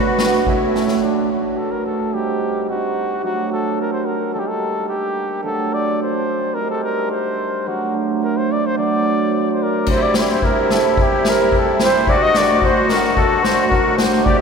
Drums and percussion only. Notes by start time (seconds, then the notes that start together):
0.19 snare
0.33 snare
0.47 kick
0.75 snare
0.88 snare
9.87 kick, crash
10.14 snare
10.29 snare
10.42 kick
10.70 snare
10.97 kick
11.25 snare
11.52 kick
11.79 snare
11.94 snare
12.07 kick
12.34 snare
12.62 kick
12.89 snare
13.04 snare
13.17 kick
13.44 snare
13.72 kick
13.98 snare
14.13 snare
14.26 kick